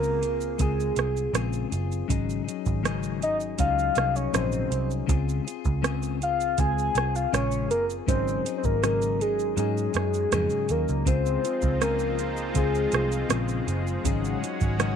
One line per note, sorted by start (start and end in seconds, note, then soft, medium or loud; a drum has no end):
0.00 0.56 C#2 medium
0.00 0.22 C#3 medium
0.00 0.22 G#3 medium
0.00 0.23 C4 medium
0.00 0.22 F4 medium
0.00 0.20 G#4 medium
0.00 0.60 A#4 medium
0.00 shaker soft
0.21 0.59 C4 soft
0.21 0.59 F4 soft
0.21 0.59 G#4 medium
0.21 closed hi-hat soft
0.21 shaker soft
0.41 shaker medium
0.58 0.90 C#2 medium
0.58 0.96 G#3 medium
0.58 0.97 C4 medium
0.58 0.96 F4 medium
0.58 1.31 G#4 medium
0.58 0.94 G#4 medium
0.58 kick medium
0.58 closed hi-hat medium
0.58 shaker medium
0.80 shaker soft
0.95 1.27 C2 medium
0.95 1.33 C4 soft
0.95 1.34 F4 soft
0.95 1.34 G#4 medium
0.95 cross-stick medium
0.95 closed hi-hat soft
0.95 shaker soft
1.17 shaker medium
1.33 1.64 A#1 medium
1.33 1.71 C#3 medium
1.33 1.72 G#3 medium
1.33 1.72 C4 medium
1.33 1.70 F4 medium
1.33 1.69 G#4 medium
1.33 cross-stick medium
1.33 closed hi-hat medium
1.33 shaker medium
1.53 shaker soft
1.70 2.02 F#1 medium
1.70 2.09 C4 soft
1.70 2.09 F4 soft
1.70 2.08 G#4 medium
1.70 closed hi-hat medium
1.70 shaker medium
1.92 shaker soft
2.08 2.39 G#1 medium
2.08 2.46 G#2 medium
2.08 2.46 C#3 medium
2.08 2.47 F#3 medium
2.08 2.46 C#4 medium
2.08 2.45 D#4 medium
2.08 2.43 G#4 medium
2.08 kick loud
2.08 closed hi-hat medium
2.08 shaker medium
2.30 shaker soft
2.44 2.83 F#3 soft
2.44 2.84 C#4 soft
2.44 2.84 D#4 medium
2.44 2.83 G#4 medium
2.49 closed hi-hat soft
2.49 shaker soft
2.66 3.55 G#1 loud
2.66 kick medium
2.66 shaker soft
2.83 3.21 G#2 medium
2.83 3.21 C#3 medium
2.83 3.22 F#3 medium
2.83 3.22 C#4 medium
2.83 3.21 D#4 medium
2.83 3.19 G#4 medium
2.83 cross-stick medium
2.83 closed hi-hat medium
2.83 shaker medium
3.03 shaker soft
3.21 3.56 F#3 soft
3.21 3.57 C#4 soft
3.21 3.59 D#4 medium
3.21 3.59 G#4 medium
3.21 3.37 D#5 medium
3.21 closed hi-hat soft
3.21 shaker soft
3.40 shaker soft
3.58 3.89 C#2 medium
3.58 3.96 F#3 medium
3.58 3.96 C#4 medium
3.58 3.95 D#4 medium
3.58 3.93 G#4 medium
3.58 4.17 F5 loud
3.58 kick medium
3.58 closed hi-hat medium
3.58 shaker medium
3.79 shaker soft
3.95 4.27 C2 medium
3.95 4.33 F#3 soft
3.95 4.33 C#4 soft
3.95 4.34 D#4 soft
3.95 4.33 G#4 medium
3.95 cross-stick medium
3.95 closed hi-hat soft
3.95 shaker soft
4.16 4.36 C#5 medium
4.16 shaker medium
4.32 4.64 A#1 medium
4.32 4.70 G#2 medium
4.32 4.71 C#3 medium
4.32 4.71 F#3 medium
4.32 4.71 C#4 medium
4.32 4.70 D#4 medium
4.32 4.69 G#4 medium
4.32 4.90 C5 medium
4.32 cross-stick medium
4.32 closed hi-hat medium
4.32 shaker medium
4.52 shaker soft
4.70 5.01 C2 medium
4.70 5.07 F#3 soft
4.70 5.08 C#4 soft
4.70 5.08 D#4 soft
4.70 5.08 G#4 soft
4.70 closed hi-hat medium
4.70 shaker soft
4.91 shaker soft
5.07 5.39 C#2 loud
5.07 5.45 C#3 medium
5.07 5.45 G#3 medium
5.07 5.46 C4 medium
5.07 5.46 F4 medium
5.07 5.43 G#4 medium
5.07 kick loud
5.07 closed hi-hat medium
5.07 shaker medium
5.29 shaker soft
5.44 5.82 C4 soft
5.44 5.83 F4 medium
5.44 5.83 G#4 medium
5.44 closed hi-hat soft
5.44 shaker soft
5.65 6.54 C#2 loud
5.65 kick medium
5.65 shaker soft
5.82 6.20 C#3 medium
5.82 6.20 G#3 medium
5.82 6.21 C4 medium
5.82 6.20 F4 medium
5.82 6.18 G#4 medium
5.82 cross-stick medium
5.82 closed hi-hat medium
5.82 shaker medium
6.03 shaker medium
6.20 6.57 C4 soft
6.20 6.58 F4 medium
6.20 6.57 G#4 medium
6.20 6.61 F5 loud
6.20 closed hi-hat soft
6.20 shaker soft
6.41 shaker soft
6.58 6.88 C#2 medium
6.58 6.95 G#3 medium
6.58 6.96 C4 medium
6.58 6.95 F4 medium
6.58 6.93 G#4 medium
6.58 7.17 G#5 loud
6.58 kick medium
6.58 closed hi-hat medium
6.58 shaker medium
6.78 shaker soft
6.94 7.25 C2 medium
6.94 7.34 C4 soft
6.94 7.33 F4 soft
6.94 7.32 G#4 soft
6.94 cross-stick medium
6.94 closed hi-hat soft
6.94 shaker soft
7.15 7.33 F5 loud
7.15 shaker medium
7.33 7.70 A#1 loud
7.33 7.70 C#3 medium
7.33 7.70 G#3 medium
7.33 7.69 F4 medium
7.33 7.67 G#4 medium
7.33 7.68 C#5 loud
7.33 cross-stick medium
7.33 closed hi-hat medium
7.33 shaker medium
7.52 shaker soft
7.68 8.00 F#1 medium
7.68 8.08 C4 soft
7.68 8.08 F4 soft
7.68 8.07 G#4 soft
7.68 7.85 A#4 medium
7.68 closed hi-hat soft
7.68 shaker soft
7.90 shaker soft
8.07 8.38 G#1 loud
8.07 8.44 G#2 medium
8.07 8.45 C#3 medium
8.07 8.45 F#3 medium
8.07 8.45 C#4 medium
8.07 8.45 D#4 medium
8.07 8.44 G#4 medium
8.07 8.53 C5 loud
8.07 kick loud
8.07 closed hi-hat medium
8.07 shaker medium
8.28 shaker soft
8.45 8.82 F#3 soft
8.45 8.83 C#4 soft
8.45 8.83 D#4 soft
8.45 8.82 G#4 medium
8.45 closed hi-hat medium
8.45 shaker soft
8.58 8.66 C5 medium
8.64 9.53 G#1 medium
8.64 9.20 A#4 loud
8.64 kick medium
8.64 shaker soft
8.82 9.19 G#2 medium
8.82 9.20 C#3 medium
8.82 9.20 F#3 medium
8.82 9.20 C#4 medium
8.82 9.20 D#4 medium
8.82 9.18 G#4 medium
8.82 cross-stick medium
8.82 closed hi-hat medium
8.82 shaker medium
9.02 shaker medium
9.19 9.55 F#3 soft
9.19 9.56 C#4 soft
9.19 9.58 D#4 medium
9.19 9.57 G#4 medium
9.19 9.55 G#4 medium
9.19 closed hi-hat soft
9.19 shaker soft
9.39 shaker soft
9.56 9.87 G#2 medium
9.56 9.94 F#3 medium
9.56 9.94 C#4 medium
9.56 9.94 D#4 medium
9.56 10.72 G#4 loud
9.56 9.92 G#4 medium
9.56 closed hi-hat medium
9.56 shaker medium
9.78 shaker soft
9.93 10.25 F#2 medium
9.93 10.31 F#3 soft
9.93 10.32 C#4 soft
9.93 10.32 D#4 soft
9.93 10.31 G#4 soft
9.93 cross-stick medium
9.93 closed hi-hat soft
9.93 shaker soft
10.14 shaker medium
10.31 10.47 F2 medium
10.31 10.69 G#2 medium
10.31 10.69 C#3 medium
10.31 10.69 F#3 medium
10.31 10.69 C#4 medium
10.31 10.68 D#4 medium
10.31 10.66 G#4 medium
10.31 cross-stick medium
10.31 closed hi-hat medium
10.31 shaker medium
10.50 shaker soft
10.68 10.85 D#2 medium
10.68 11.06 C#4 soft
10.68 11.06 D#4 soft
10.68 11.05 G#4 soft
10.68 11.09 A#4 medium
10.68 closed hi-hat soft
10.68 shaker medium
10.72 11.06 F#3 soft
10.88 11.03 C#2 medium
10.88 shaker soft
11.05 11.36 C#2 medium
11.05 11.43 C#3 medium
11.05 14.03 F3 medium
11.05 11.43 G#3 medium
11.05 14.96 G#3 medium
11.05 11.44 C4 medium
11.05 14.02 C4 medium
11.05 14.03 D#4 medium
11.05 11.43 F4 medium
11.05 14.03 F4 medium
11.05 11.41 G#4 medium
11.05 11.84 C5 medium
11.05 kick loud
11.05 closed hi-hat medium
11.05 shaker medium
11.26 shaker soft
11.42 11.81 F4 soft
11.42 11.80 G#4 soft
11.42 closed hi-hat soft
11.42 shaker soft
11.46 11.81 C4 soft
11.62 12.52 C#2 medium
11.62 kick medium
11.62 shaker soft
11.81 12.18 C#3 medium
11.81 12.18 G#3 medium
11.81 12.19 C4 medium
11.81 12.18 F4 medium
11.81 12.16 G#4 medium
11.81 12.56 A#4 medium
11.81 cross-stick medium
11.81 closed hi-hat medium
11.81 shaker medium
11.99 shaker medium
12.17 12.54 C4 soft
12.17 12.55 F4 soft
12.17 12.55 G#4 medium
12.17 closed hi-hat soft
12.17 shaker medium
12.37 shaker soft
12.54 12.85 C#2 medium
12.54 12.92 G#3 medium
12.54 12.93 C4 medium
12.54 12.92 F4 medium
12.54 13.27 G#4 medium
12.54 kick medium
12.54 closed hi-hat medium
12.54 shaker medium
12.58 12.90 G#4 medium
12.75 shaker soft
12.91 13.23 C2 medium
12.91 13.29 C4 soft
12.91 13.29 F4 soft
12.91 13.29 G#4 medium
12.91 cross-stick medium
12.91 closed hi-hat soft
12.91 shaker soft
13.12 shaker medium
13.29 13.60 A#1 medium
13.29 13.67 C#3 medium
13.29 13.67 G#3 medium
13.29 13.67 C4 medium
13.29 13.68 F4 medium
13.29 13.65 G#4 medium
13.29 cross-stick loud
13.29 closed hi-hat medium
13.29 shaker medium
13.48 shaker soft
13.66 13.97 F#1 medium
13.66 14.05 C4 soft
13.66 14.05 F4 medium
13.66 14.04 G#4 medium
13.66 closed hi-hat medium
13.66 shaker soft
13.87 shaker soft
14.03 14.35 G#1 medium
14.03 14.41 G#2 medium
14.03 14.42 C#3 medium
14.03 14.42 F#3 medium
14.03 14.42 C#4 medium
14.03 14.96 C#4 medium
14.03 14.41 D#4 medium
14.03 14.96 F#4 medium
14.03 14.39 G#4 medium
14.03 kick loud
14.03 closed hi-hat medium
14.03 shaker medium
14.25 shaker soft
14.41 14.78 F#3 soft
14.41 14.78 C#4 soft
14.41 14.79 D#4 soft
14.41 14.79 G#4 medium
14.41 closed hi-hat medium
14.41 shaker soft
14.61 14.96 G#1 loud
14.61 kick medium
14.61 shaker soft
14.78 14.96 G#2 medium
14.78 14.96 C#3 medium
14.78 14.96 F#3 medium
14.78 14.96 C#4 medium
14.78 14.96 D#4 medium
14.78 14.96 G#4 medium
14.78 cross-stick medium
14.78 closed hi-hat medium
14.78 shaker medium